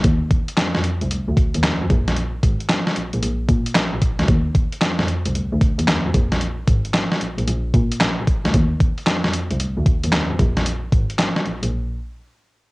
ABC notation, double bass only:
X:1
M:4/4
L:1/16
Q:"Swing 16ths" 1/4=113
K:Eb
V:1 name="Double bass" clef=bass
E,,3 z F,, F,, z C,, D,, D,, z E,, F,, F,, B,,,2- | B,,,2 A,,, z3 B,,, B,,, B,,, z B,, z B,,, B,,, z D,, | E,,3 z F,, F,, z C,, D,, D,, z E,, F,, F,, B,,,2- | B,,,2 A,,, z3 B,,, B,,, B,,, z B,, z B,,, B,,, z D,, |
E,,3 z F,, F,, z C,, D,, D,, z E,, F,, F,, B,,,2- | B,,,2 A,,, z3 B,,, B,,, z8 |]